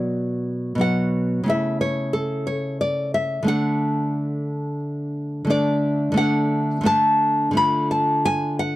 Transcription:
Already playing: B2 F#3 F#4 D5
0.75 B2 F#3
0.79 F#4 F#5
1.43 C#3 A3
1.48 E4 E5
1.81 C#5
2.13 A4
2.47 C#5
2.81 D5
3.14 E5
3.43 D3 A3
3.47 D4 F#5
5.45 D3 A3
5.50 D4 D5
6.12 D3 A3
6.16 D4 F#5
6.81 D3 A3
6.85 D4 A5
7.51 D3 A3
7.55 F4 B5
7.91 A5
8.25 G#5
8.59 F#5

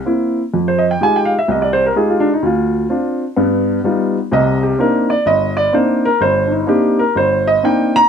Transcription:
0.05 A#3 C4 E4
0.54 F2
0.68 C5
0.78 D#5
0.91 G5
1.01 G#3 D#4 F4 G4 G#5
1.16 G5
1.25 F5
1.39 E5
1.48 C2 D#5
1.62 D5
1.73 C5
1.86 A#4
1.96 G#3 D#4 F4 G4 G#4
2.10 F4
2.20 D4
2.34 D#4
2.42 D2 F4
2.90 C4 D4 F4
3.36 G2 B3
3.84 G3 B3 D#4 F4
4.32 C2 C3 D#5
4.63 G4
4.79 A#3 C4 D4 D#4 A#4
5.10 D5
5.26 G1 D#5
5.57 D5
5.73 A#3 C4 D4 D#4 C5
6.05 A#4
6.21 G1 C5
6.47 D4
6.52 D#4
6.66 A#3 C4 D4 D#4 G4
6.99 A#4
7.15 G1 C5
7.47 D#5
7.63 A#3 C4 D4 D#4 G5
7.96 A#5

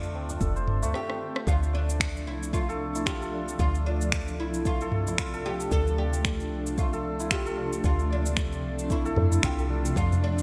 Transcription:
Already playing: F2 D3 A3 C4 D4 F4 A4 C5
0.03 cabasa
0.14 D2, tabla na
0.29 D4, tabla na, tabla ge, cabasa
0.41 F1 A4, kick, cabasa
0.56 C5, cabasa
0.68 mid tom
0.82 D2 A3, cabasa
0.94 G4, cross-stick
1.10 cross-stick
1.36 cross-stick
1.47 D2 C3 F3 A3 D4 F4, kick, cabasa
1.63 cabasa
1.73 D4 D5
1.90 cabasa
2.00 finger snap, kick, cabasa
2.17 cabasa
2.26 C2 E4
2.43 cabasa
2.53 A3 F4, kick, cabasa
2.69 A4, cabasa
2.95 E4, cabasa
3.06 F4 G4, finger snap, kick, cabasa
3.22 A4, cabasa
3.33 D4
3.48 cabasa
3.59 D2 D4 F4, kick, cabasa
3.75 cabasa
3.86 D4 D5
4.01 cabasa
4.12 finger snap, kick, cabasa
4.28 cabasa
4.39 C2 E4
4.54 cabasa
4.65 A3 F4, kick, cabasa
4.81 A4, cabasa
4.92 mid tom
5.07 E4, cabasa
5.18 F4, finger snap, kick, cabasa
5.33 A4, cabasa
5.45 D4 G4
5.60 cabasa
5.71 D2 D4 A4, kick, cabasa
5.87 cabasa
5.98 G4 D5
6.13 cabasa
6.25 finger snap, kick, cabasa
6.40 cabasa
6.51 C2
6.67 cabasa
6.78 A3 F4, kick, cabasa
6.93 A4, cabasa
7.20 E4, cabasa
7.31 F4 G4, finger snap, kick, cabasa
7.46 A4, cabasa
7.57 D4
7.73 cabasa
7.84 D2 D4 F4, kick, cabasa
7.99 cabasa
8.10 D4 D5
8.26 cabasa
8.37 finger snap, kick, cabasa
8.52 cabasa
8.64 C2
8.79 cabasa
8.90 A3 E4, kick, cabasa
9.05 A4, cabasa
9.16 F2, mid tom
9.32 E4, cabasa
9.43 C2 F4 G4, finger snap, kick, cabasa
9.59 A4, cabasa
9.70 D4
9.85 cabasa
9.96 F2 D4 F4, kick, cabasa
10.12 tabla tin, tabla ge, cabasa
10.22 D4 D5, tabla na, tabla tin
10.39 cabasa

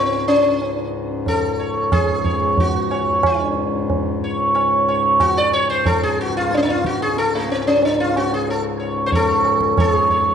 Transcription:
Already playing: C#2 G#2 C4
0.28 C#4
0.62 tabla tin
1.26 A4, tabla tin, tabla ge
1.59 C#5
1.92 G#4, tabla na, tabla ge
2.24 C#5, tabla ge
2.57 F#4, tabla tin, tabla ge
2.91 C#5, tabla na
3.23 C#2 G#2 D4, tabla na, tabla ge
3.90 tabla tin, tabla ge
4.24 C#5
4.54 C#5, tabla na
4.88 C#5, tabla na
5.20 F#4, tabla na, tabla ge
5.37 D5
5.53 C#5
5.70 C5
5.85 A4, tabla tin, tabla ge
6.03 G#4
6.21 F#4
6.37 F4
6.51 D4, tabla te
6.57 C#4
6.63 D4
6.68 F4, tabla te
6.85 F#4, tabla ke
7.01 G#4, tabla te
7.17 A4, tabla te
7.35 A3
7.49 C4, tabla te
7.67 C#4
7.82 D4, tabla tin
8.00 F4
8.16 F#4, tabla na
8.34 G#4
8.49 A4, tabla tin
8.80 C#5
9.06 C5
9.12 A4 C#5, tabla tin, tabla ge
9.45 tabla na
9.61 tabla ke
9.78 A4 C#5, tabla na, tabla ge
9.92 G#4
10.09 C#5, tabla ge

